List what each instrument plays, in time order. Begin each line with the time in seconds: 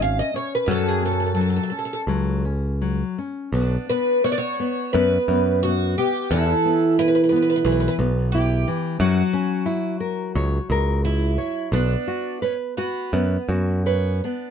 Already playing: picked electric bass G#1
0.00 nylon-string guitar C#4, twelve-string acoustic guitar F5
0.19 twelve-string acoustic guitar D#5
0.34 nylon-string guitar C#4, twelve-string acoustic guitar C#5
0.55 twelve-string acoustic guitar B4
0.66 picked electric bass F#2, nylon-string guitar F#3, twelve-string acoustic guitar B4
0.71 twelve-string acoustic guitar A4
0.88 twelve-string acoustic guitar G#4
1.02 nylon-string guitar C#4, twelve-string acoustic guitar A4
1.11 twelve-string acoustic guitar A4
1.20 twelve-string acoustic guitar A4
1.26 twelve-string acoustic guitar A4
1.35 nylon-string guitar F#3, twelve-string acoustic guitar A4
1.41 twelve-string acoustic guitar A4
1.50 twelve-string acoustic guitar A4
1.57 twelve-string acoustic guitar A4
1.63 twelve-string acoustic guitar A4
1.70 nylon-string guitar C#4, twelve-string acoustic guitar A4
1.79 twelve-string acoustic guitar A4
1.85 twelve-string acoustic guitar A4
1.93 twelve-string acoustic guitar A4
2.07 picked electric bass C#2, nylon-string guitar F#3
2.45 nylon-string guitar C#4
2.82 nylon-string guitar F#3
3.18 nylon-string guitar C#4
3.52 picked electric bass B1, nylon-string guitar B3, twelve-string acoustic guitar D4
3.89 nylon-string guitar B3, twelve-string acoustic guitar B4
4.24 nylon-string guitar B3, twelve-string acoustic guitar F#4 C#5
4.32 twelve-string acoustic guitar D5
4.38 twelve-string acoustic guitar C#5
4.60 nylon-string guitar B3
4.93 picked electric bass F#2, nylon-string guitar B3, twelve-string acoustic guitar B4
5.28 picked electric bass F#2, nylon-string guitar B3
5.63 nylon-string guitar B3, twelve-string acoustic guitar F#4
5.98 nylon-string guitar B3, twelve-string acoustic guitar G4
6.31 picked electric bass E2, nylon-string guitar E3, twelve-string acoustic guitar E4 A4
6.65 nylon-string guitar B3
6.99 nylon-string guitar E4, twelve-string acoustic guitar B4
7.08 twelve-string acoustic guitar B4
7.15 twelve-string acoustic guitar B4
7.24 twelve-string acoustic guitar B4
7.29 nylon-string guitar B3, twelve-string acoustic guitar B4
7.36 twelve-string acoustic guitar B4
7.42 twelve-string acoustic guitar B4
7.50 twelve-string acoustic guitar B4
7.56 twelve-string acoustic guitar B4
7.65 picked electric bass B1, nylon-string guitar E3, twelve-string acoustic guitar B4
7.72 twelve-string acoustic guitar B4
7.80 twelve-string acoustic guitar B4
7.88 twelve-string acoustic guitar B4
7.99 picked electric bass B1, nylon-string guitar B3
8.32 nylon-string guitar E4, twelve-string acoustic guitar G4
8.68 nylon-string guitar E3
9.00 picked electric bass F#2, nylon-string guitar F#3, twelve-string acoustic guitar F#4
9.33 nylon-string guitar C#4
9.66 nylon-string guitar E4
10.00 nylon-string guitar A#4
10.35 picked electric bass C#2, nylon-string guitar C#5
10.70 picked electric bass C#2, nylon-string guitar A#4
11.05 twelve-string acoustic guitar E4, nylon-string guitar E4
11.38 nylon-string guitar C#5
11.72 picked electric bass B1, nylon-string guitar B3, twelve-string acoustic guitar D4
12.08 nylon-string guitar F#4
12.42 twelve-string acoustic guitar C#4, nylon-string guitar B4
12.77 twelve-string acoustic guitar B3, nylon-string guitar F#4
13.13 picked electric bass F#2, nylon-string guitar B3
13.48 picked electric bass F#2, nylon-string guitar F#4
13.86 twelve-string acoustic guitar C#4, nylon-string guitar B4
14.24 nylon-string guitar B3, twelve-string acoustic guitar D4